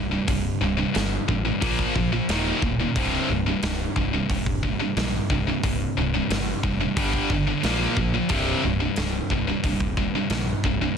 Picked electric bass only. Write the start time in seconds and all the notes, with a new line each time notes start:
Already playing: C1
0.28 C1
0.62 C1
0.96 G1
1.28 A1
1.62 A#1
1.95 A#1
2.29 D#1
2.62 D1
2.96 C1
3.30 C1
3.63 C1
3.96 C1
4.30 D#1
4.97 A#1
5.30 C1
5.63 C1
5.97 C1
6.31 G1
6.63 F1
6.96 G1
7.30 G1
7.64 A#1
7.97 A#1
8.30 C1
8.65 C1
8.97 C1
9.30 C1
9.64 D#1
10.30 A#1
10.64 C1